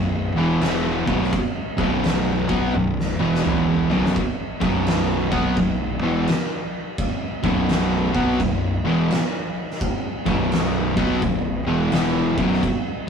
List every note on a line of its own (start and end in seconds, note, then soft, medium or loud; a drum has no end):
0.00 0.34 B0 medium
0.00 0.28 B1 medium
0.00 0.28 F#2 medium
0.36 0.60 E1 loud
0.36 0.62 E2 medium
0.36 0.62 B2 loud
0.36 0.63 E3 loud
0.61 1.04 E1 loud
0.61 1.07 E2 medium
0.61 1.07 B2 medium
0.61 1.07 E3 loud
0.61 snare loud
0.61 crash medium
1.07 1.31 B0 loud
1.07 1.33 B1 medium
1.07 1.33 F#2 medium
1.07 1.33 B2 loud
1.07 kick loud
1.23 snare soft
1.33 kick loud
1.33 crash medium
1.78 2.45 B0 medium
1.78 2.48 B1 medium
1.78 2.48 F#2 loud
1.78 2.48 B2 loud
1.78 kick loud
2.04 snare loud
2.04 crash medium
2.49 2.73 B1 loud
2.49 2.74 B2 medium
2.49 2.74 F#3 medium
2.49 2.74 B3 loud
2.49 kick loud
2.73 3.16 B0 medium
2.73 3.10 B1 medium
2.73 3.11 F#2 medium
2.73 high tom medium
3.00 snare medium
3.19 3.43 E1 loud
3.19 3.43 E2 medium
3.19 3.44 B2 loud
3.19 3.44 E3 loud
3.35 snare medium
3.45 3.87 E1 loud
3.45 3.89 E2 medium
3.45 3.89 B2 medium
3.45 3.89 E3 loud
3.45 mid tom medium
3.90 4.14 B0 medium
3.90 4.15 B1 medium
3.90 4.15 F#2 medium
3.90 4.15 B2 loud
3.90 floor tom loud
4.06 snare medium
4.16 kick loud
4.16 crash medium
4.60 5.28 B0 loud
4.60 5.30 B1 medium
4.60 5.30 F#2 medium
4.60 5.29 B2 loud
4.60 kick loud
4.87 snare loud
4.87 crash medium
5.30 5.55 B1 loud
5.30 5.56 B2 medium
5.30 5.56 F#3 loud
5.30 5.56 B3 medium
5.30 kick loud
5.56 5.99 B0 medium
5.56 5.93 B1 medium
5.56 5.93 F#2 medium
5.56 kick medium
5.56 crash medium
6.01 6.26 E1 loud
6.01 6.27 E2 medium
6.01 6.27 B2 loud
6.01 6.27 E3 loud
6.28 snare loud
6.28 crash medium
6.98 kick loud
6.98 crash medium
7.43 8.10 B0 loud
7.43 8.13 B1 loud
7.43 8.13 F#2 medium
7.43 8.12 B2 loud
7.43 kick loud
7.69 snare loud
7.69 crash medium
8.14 8.38 B1 medium
8.14 8.39 B2 medium
8.14 8.39 F#3 medium
8.14 8.39 B3 loud
8.14 kick loud
8.39 8.82 B0 medium
8.39 8.76 B1 medium
8.39 8.76 F#2 medium
8.39 kick medium
8.39 crash medium
8.84 9.08 E1 loud
8.84 9.09 E2 loud
8.84 9.10 B2 medium
8.84 9.10 E3 loud
9.11 snare loud
9.11 crash medium
9.71 snare soft
9.81 kick loud
9.81 crash medium
10.26 10.93 B0 medium
10.26 10.95 B1 loud
10.26 10.95 F#2 medium
10.26 10.96 B2 loud
10.26 kick loud
10.52 snare loud
10.52 crash medium
10.97 11.20 B1 loud
10.97 11.21 B2 medium
10.97 11.21 F#3 loud
10.97 11.22 B3 loud
10.97 kick loud
11.22 11.64 B0 medium
11.22 11.58 B1 medium
11.22 11.58 F#2 medium
11.22 kick medium
11.22 crash medium
11.67 11.90 E1 loud
11.67 11.92 E2 loud
11.67 11.92 B2 loud
11.67 11.92 E3 loud
11.92 12.34 E1 loud
11.92 12.37 E2 medium
11.92 12.37 B2 medium
11.92 12.37 E3 medium
11.92 snare loud
11.92 crash medium
12.38 12.61 B0 medium
12.38 12.62 B1 medium
12.38 12.62 F#2 medium
12.38 12.63 B2 loud
12.38 kick loud
12.53 snare soft
12.63 kick loud
12.63 crash medium